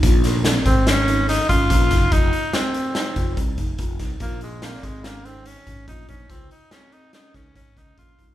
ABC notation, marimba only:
X:1
M:5/4
L:1/8
Q:1/4=144
K:Bbm
V:1 name="Marimba"
F2 C C D E2 D F E | F2 C C E F2 E F E | F2 C C D E2 D F E | F2 C C D E2 D F E |]